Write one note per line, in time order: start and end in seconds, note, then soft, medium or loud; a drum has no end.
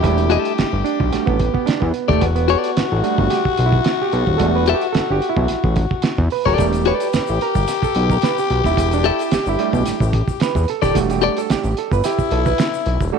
0.00 1.11 G3 soft
0.00 1.11 A3 medium
0.00 0.83 D4 medium
0.00 0.81 E4 loud
0.00 1.90 G4 loud
0.00 kick loud
0.00 closed hi-hat medium
0.04 0.38 E1 loud
0.04 2.18 G4 medium
0.18 closed hi-hat medium
0.30 0.51 G4 medium
0.30 0.51 A4 medium
0.30 0.52 E5 medium
0.30 closed hi-hat medium
0.45 closed hi-hat medium
0.58 0.64 G1 medium
0.58 snare loud
0.58 closed hi-hat medium
0.73 0.83 G1 medium
0.84 1.12 D4 medium
0.84 closed hi-hat medium
1.00 1.11 B1 loud
1.00 kick loud
1.12 1.19 A1 soft
1.12 1.37 G3 soft
1.12 1.37 A3 soft
1.12 1.37 D4 soft
1.12 1.38 F#4 soft
1.12 snare soft
1.12 closed hi-hat medium
1.26 1.50 A1 medium
1.26 1.53 B3 medium
1.26 kick medium
1.39 kick medium
1.39 closed hi-hat medium
1.54 1.67 B3 medium
1.54 kick medium
1.66 1.82 D4 medium
1.66 snare loud
1.66 closed hi-hat medium
1.80 1.92 E2 loud
1.80 2.09 B3 medium
1.80 kick medium
1.94 closed hi-hat medium
2.08 2.20 D#1 medium
2.08 2.22 A3 medium
2.08 2.25 G4 medium
2.08 2.25 A4 medium
2.08 2.25 D5 medium
2.08 kick medium
2.08 snare soft
2.21 2.56 E1 loud
2.21 2.28 B3 medium
2.21 6.27 F#4 loud
2.21 kick loud
2.21 closed hi-hat medium
2.36 2.87 B3 medium
2.36 closed hi-hat medium
2.48 2.69 G4 medium
2.48 2.70 A4 medium
2.48 2.70 D5 loud
2.48 closed hi-hat medium
2.64 closed hi-hat medium
2.77 2.83 A1 soft
2.77 snare loud
2.77 closed hi-hat loud
2.92 3.02 A1 medium
3.03 3.40 G3 medium
3.03 3.41 A3 medium
3.03 3.41 D4 medium
3.03 3.41 F#4 medium
3.03 closed hi-hat medium
3.18 3.29 G1 loud
3.18 kick medium
3.30 3.65 G4 medium
3.30 snare soft
3.30 closed hi-hat medium
3.45 kick medium
3.57 3.81 B1 medium
3.57 closed hi-hat medium
3.66 4.01 E4 medium
3.72 kick medium
3.84 snare loud
3.84 closed hi-hat medium
4.02 4.40 G4 medium
4.12 4.25 B1 loud
4.12 closed hi-hat medium
4.27 4.38 D#1 medium
4.27 kick medium
4.38 4.74 E1 loud
4.38 4.64 G3 medium
4.38 4.64 A3 medium
4.38 4.77 D4 soft
4.38 4.77 F#4 medium
4.38 4.46 A4 loud
4.38 kick loud
4.38 closed hi-hat medium
4.56 4.76 B4 loud
4.66 4.85 G4 medium
4.66 4.85 A4 medium
4.66 4.86 E5 medium
4.66 closed hi-hat medium
4.74 4.83 G4 loud
4.81 closed hi-hat medium
4.92 5.01 G1 medium
4.92 5.13 A4 loud
4.92 snare loud
4.92 closed hi-hat medium
5.10 5.20 G1 medium
5.10 5.29 G4 loud
5.22 closed hi-hat medium
5.29 5.81 E4 medium
5.37 5.47 B1 loud
5.37 kick loud
5.48 5.56 A1 medium
5.48 snare soft
5.48 closed hi-hat medium
5.64 5.86 A1 medium
5.64 kick medium
5.76 kick loud
5.76 closed hi-hat medium
5.91 kick loud
6.02 snare loud
6.02 closed hi-hat medium
6.18 6.29 E2 loud
6.18 kick medium
6.30 6.47 B4 loud
6.30 open hi-hat medium
6.46 6.56 D#1 medium
6.46 6.67 G4 medium
6.46 6.66 A4 medium
6.46 6.84 A#4 loud
6.46 6.65 D5 medium
6.46 kick loud
6.46 snare soft
6.58 6.93 E1 loud
6.58 6.95 G3 medium
6.58 6.96 A3 medium
6.58 6.96 D4 soft
6.58 6.96 G4 medium
6.58 10.65 G4 loud
6.58 kick loud
6.58 closed hi-hat medium
6.58 shaker medium
6.73 closed hi-hat medium
6.73 shaker medium
6.85 7.06 G4 medium
6.85 7.07 A4 medium
6.85 7.43 B4 loud
6.85 7.07 D5 medium
6.85 closed hi-hat medium
7.00 closed hi-hat medium
7.00 shaker medium
7.13 7.20 A1 medium
7.13 snare loud
7.13 closed hi-hat loud
7.13 shaker medium
7.27 7.39 A1 medium
7.27 shaker medium
7.41 7.84 A#4 loud
7.41 closed hi-hat medium
7.55 7.66 G1 medium
7.55 kick medium
7.55 shaker medium
7.68 snare soft
7.68 closed hi-hat medium
7.68 shaker medium
7.83 8.11 A4 medium
7.83 kick medium
7.83 shaker medium
7.95 8.18 B1 medium
7.95 closed hi-hat medium
8.10 8.17 A#4 medium
8.10 kick medium
8.10 shaker soft
8.22 8.38 B4 loud
8.22 snare loud
8.22 closed hi-hat medium
8.22 shaker medium
8.38 8.66 G4 medium
8.38 shaker medium
8.50 8.62 B1 medium
8.50 closed hi-hat medium
8.64 8.75 D#1 medium
8.64 8.94 E4 medium
8.64 kick medium
8.64 snare soft
8.64 shaker medium
8.77 9.11 E1 loud
8.77 kick loud
8.77 closed hi-hat medium
8.77 shaker medium
8.91 9.06 D4 medium
8.91 closed hi-hat medium
8.91 shaker medium
9.04 9.34 E4 loud
9.04 9.21 G4 medium
9.04 9.22 A4 medium
9.04 9.22 E5 medium
9.04 closed hi-hat medium
9.19 closed hi-hat medium
9.19 shaker medium
9.31 9.38 G1 medium
9.31 9.48 G4 loud
9.31 snare loud
9.31 closed hi-hat medium
9.31 shaker medium
9.46 9.57 G1 medium
9.46 10.25 E4 medium
9.46 shaker soft
9.59 9.96 G3 medium
9.59 9.96 A3 medium
9.59 9.96 D4 medium
9.59 9.96 G4 medium
9.59 closed hi-hat medium
9.73 9.84 B1 loud
9.73 kick medium
9.73 shaker medium
9.86 9.92 A1 soft
9.86 snare soft
9.86 closed hi-hat medium
9.86 shaker medium
10.00 10.23 A1 medium
10.00 kick medium
10.00 shaker medium
10.13 kick medium
10.13 closed hi-hat medium
10.28 kick medium
10.28 shaker soft
10.40 10.70 B4 loud
10.40 snare loud
10.40 closed hi-hat medium
10.40 shaker medium
10.55 10.66 E2 loud
10.55 kick medium
10.55 shaker medium
10.68 10.84 A4 medium
10.68 closed hi-hat medium
10.82 10.93 D#1 medium
10.82 10.99 G4 medium
10.82 11.09 G4 medium
10.82 10.98 A4 medium
10.82 10.98 D5 medium
10.82 kick loud
10.82 snare soft
10.82 shaker medium
10.94 11.29 E1 loud
10.94 11.73 G3 medium
10.94 11.73 A3 medium
10.94 11.73 D4 medium
10.94 11.73 F#4 medium
10.94 kick loud
10.94 closed hi-hat loud
10.94 shaker medium
11.10 11.38 G4 medium
11.10 closed hi-hat medium
11.10 shaker medium
11.21 11.39 G4 medium
11.21 11.40 A4 medium
11.21 11.40 D5 medium
11.21 closed hi-hat medium
11.37 11.51 A4 loud
11.37 closed hi-hat medium
11.37 shaker medium
11.50 11.56 A1 medium
11.50 11.79 G4 medium
11.50 snare loud
11.50 closed hi-hat medium
11.50 shaker medium
11.64 11.75 A1 medium
11.64 shaker medium
11.77 11.91 A4 medium
11.77 closed hi-hat medium
11.91 12.02 G1 medium
11.91 12.05 B4 loud
11.91 kick loud
11.91 shaker medium
12.04 13.12 E4 loud
12.04 12.33 G4 medium
12.04 snare soft
12.04 closed hi-hat medium
12.04 shaker medium
12.19 kick medium
12.19 shaker medium
12.31 12.54 B1 medium
12.31 12.47 A4 medium
12.31 closed hi-hat medium
12.46 12.59 B4 medium
12.46 kick medium
12.46 shaker soft
12.58 snare loud
12.58 closed hi-hat medium
12.58 shaker medium
12.74 shaker medium
12.86 12.98 B1 loud
12.86 closed hi-hat medium
13.01 13.11 D#1 loud
13.01 kick loud
13.01 shaker medium
13.12 13.19 G3 medium
13.12 13.19 A3 soft
13.12 13.19 D4 soft
13.12 13.19 F#4 medium
13.12 13.19 A4 loud